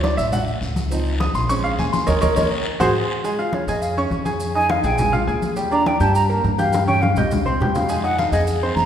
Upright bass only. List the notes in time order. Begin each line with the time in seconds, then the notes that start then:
Already playing: D2
0.18 A1
0.61 C#2
1.34 A#1
1.78 D#2
2.08 D#2
2.22 D#2
2.36 D#2
2.80 G#1
3.67 F2
4.11 F2
4.83 A#1
5.27 D#2
6.00 G2
6.44 G2
7.16 C2
7.60 F2
8.32 F2
8.76 F2